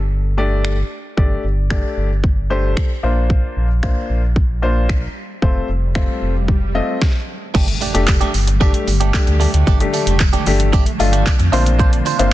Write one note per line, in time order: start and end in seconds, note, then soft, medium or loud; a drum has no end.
0.00 0.83 G1 medium
0.37 0.75 A3 medium
0.37 0.75 D4 medium
0.37 0.76 G4 medium
0.37 0.76 D5 loud
0.65 finger snap loud
1.17 1.37 G1 loud
1.17 1.42 A3 medium
1.17 1.42 D4 medium
1.17 1.43 G4 medium
1.17 1.43 D5 medium
1.17 kick loud
1.44 1.83 G1 medium
1.70 2.08 A3 medium
1.70 2.08 D4 medium
1.70 2.08 G4 medium
1.70 2.08 D5 medium
1.70 finger snap loud
1.70 kick medium
1.97 2.76 G1 medium
2.24 kick loud
2.50 2.88 A3 medium
2.50 2.88 D4 medium
2.50 2.88 G4 medium
2.50 2.88 C5 loud
2.77 finger snap loud
2.77 kick loud
3.03 3.43 A#1 loud
3.03 3.67 A#3 medium
3.03 3.67 D4 medium
3.03 3.67 F4 medium
3.03 3.67 C5 medium
3.30 kick loud
3.30 swell medium
3.57 3.96 A#1 loud
3.83 4.21 A#3 medium
3.83 4.21 D4 medium
3.83 4.21 F4 medium
3.83 4.21 C5 medium
3.83 finger snap loud
3.83 kick loud
4.10 5.08 A#1 medium
4.36 kick loud
4.62 5.00 A#3 medium
4.62 5.00 D4 medium
4.62 5.00 F4 medium
4.62 5.00 C5 loud
4.89 finger snap loud
4.89 kick loud
5.42 5.62 F1 loud
5.42 5.67 A3 medium
5.42 5.67 C4 medium
5.42 5.67 F4 medium
5.42 5.68 C5 medium
5.42 kick loud
5.69 6.08 F1 loud
5.95 6.33 A3 medium
5.95 6.33 C4 medium
5.95 6.33 F4 medium
5.95 6.33 C5 medium
5.95 finger snap loud
5.95 kick loud
6.22 6.81 F1 medium
6.48 kick loud
6.75 7.01 A3 medium
6.75 7.01 C4 medium
6.75 7.01 F4 medium
6.75 7.02 D#5 loud
7.02 kick loud
7.02 snare medium
7.54 7.74 G1 loud
7.54 12.33 D3 medium
7.54 9.65 G3 medium
7.54 7.72 A3 medium
7.54 11.49 A3 medium
7.54 7.68 D4 loud
7.54 7.66 G4 loud
7.54 kick loud
7.54 crash loud
7.54 impact medium
7.68 muted clean electric guitar stroke medium
7.68 closed hi-hat medium
7.81 7.94 A3 medium
7.81 7.94 D4 medium
7.81 7.93 G4 medium
7.81 open hi-hat medium
7.81 tambourine medium
7.94 8.24 F1 medium
7.94 8.26 A3 medium
7.94 8.06 A3 medium
7.94 8.26 D4 medium
7.94 8.07 D4 medium
7.94 8.07 G4 medium
7.94 8.26 G4 medium
7.94 closed hi-hat medium
8.08 muted clean electric guitar stroke soft
8.08 kick loud
8.08 clap loud
8.08 tambourine medium
8.21 8.33 A3 medium
8.21 8.33 D4 medium
8.21 8.34 G4 medium
8.21 closed hi-hat medium
8.34 8.74 G1 loud
8.34 open hi-hat medium
8.34 tambourine medium
8.47 muted clean electric guitar stroke soft
8.47 closed hi-hat medium
8.60 8.78 A3 medium
8.60 8.86 A3 medium
8.60 8.86 D4 medium
8.60 8.74 D4 medium
8.60 8.86 G4 loud
8.60 8.73 G4 medium
8.60 kick loud
8.60 tambourine soft
8.74 muted clean electric guitar stroke soft
8.74 closed hi-hat medium
8.87 9.17 G1 medium
8.87 muted clean electric guitar stroke soft
8.87 open hi-hat medium
8.87 tambourine medium
9.00 9.12 A3 medium
9.00 9.13 D4 medium
9.00 9.13 G4 medium
9.00 closed hi-hat medium
9.14 9.45 A3 medium
9.14 9.45 D4 medium
9.14 9.46 G4 medium
9.14 kick loud
9.14 clap loud
9.14 tambourine medium
9.27 9.47 D2 medium
9.27 muted clean electric guitar stroke soft
9.27 closed hi-hat soft
9.40 9.53 A3 medium
9.40 9.53 D4 medium
9.40 9.52 G4 medium
9.40 open hi-hat medium
9.40 tambourine soft
9.53 9.64 D2 medium
9.53 9.65 A3 medium
9.53 9.66 D4 medium
9.53 9.67 G4 medium
9.53 closed hi-hat medium
9.66 9.87 G1 loud
9.66 11.51 F3 medium
9.66 9.84 A3 medium
9.66 9.80 D4 medium
9.66 9.79 G4 loud
9.66 kick loud
9.66 tambourine soft
9.66 shaker medium
9.80 10.12 A3 medium
9.80 10.12 D4 medium
9.80 10.12 G4 loud
9.80 muted clean electric guitar stroke soft
9.80 closed hi-hat medium
9.80 shaker medium
9.93 10.06 A3 medium
9.93 10.06 D4 medium
9.93 10.05 G4 medium
9.93 open hi-hat medium
9.93 tambourine medium
9.93 shaker medium
10.06 10.36 F1 medium
10.06 10.18 A3 soft
10.06 10.19 D4 medium
10.06 10.19 G4 medium
10.06 closed hi-hat medium
10.06 shaker medium
10.20 kick loud
10.20 clap loud
10.20 tambourine medium
10.20 shaker medium
10.33 10.45 A3 medium
10.33 10.46 D4 medium
10.33 10.46 G4 medium
10.33 closed hi-hat medium
10.33 shaker medium
10.46 10.86 G1 loud
10.46 10.72 A3 medium
10.46 10.72 D4 medium
10.46 10.72 G4 loud
10.46 muted clean electric guitar stroke soft
10.46 open hi-hat medium
10.46 tambourine medium
10.46 shaker medium
10.59 muted clean electric guitar stroke soft
10.59 closed hi-hat medium
10.59 shaker medium
10.73 10.90 A3 medium
10.73 10.86 D4 loud
10.73 10.85 G4 medium
10.73 kick loud
10.73 tambourine soft
10.73 shaker medium
10.86 muted clean electric guitar stroke medium
10.86 closed hi-hat medium
10.86 shaker medium
10.99 11.29 G1 medium
10.99 11.31 A3 medium
10.99 11.31 D4 medium
10.99 11.31 F4 loud
10.99 muted clean electric guitar stroke soft
10.99 open hi-hat medium
10.99 tambourine medium
10.99 shaker medium
11.12 11.27 A3 medium
11.12 11.27 D4 medium
11.12 11.26 G4 medium
11.12 closed hi-hat medium
11.12 shaker medium
11.26 kick loud
11.26 clap loud
11.26 tambourine medium
11.26 shaker medium
11.39 11.49 F2 medium
11.39 muted clean electric guitar stroke medium
11.39 closed hi-hat medium
11.39 shaker soft
11.52 12.02 A#1 loud
11.52 12.06 A#3 medium
11.52 12.33 A#3 medium
11.52 12.06 C4 medium
11.52 12.33 C4 medium
11.52 11.70 D4 medium
11.52 12.06 D4 medium
11.52 12.06 F4 medium
11.52 11.65 F4 medium
11.52 12.06 C5 loud
11.52 11.64 C5 loud
11.52 open hi-hat medium
11.52 tambourine soft
11.52 shaker medium
11.66 muted clean electric guitar stroke soft
11.66 closed hi-hat medium
11.66 shaker medium
11.79 11.97 D4 medium
11.79 11.92 F4 medium
11.79 11.91 C5 medium
11.79 kick loud
11.79 shaker medium
11.92 muted clean electric guitar stroke medium
11.92 closed hi-hat medium
11.92 shaker medium
12.05 12.19 D4 medium
12.05 12.18 F4 medium
12.05 12.17 C5 medium
12.05 open hi-hat medium
12.05 tambourine medium
12.05 shaker medium
12.19 12.33 G1 medium
12.19 12.33 A#3 medium
12.19 12.33 C4 medium
12.19 12.33 D4 medium
12.19 12.31 D4 medium
12.19 12.31 F4 medium
12.19 12.33 F4 medium
12.19 12.32 C5 medium
12.19 12.33 C5 medium
12.19 closed hi-hat medium
12.19 shaker medium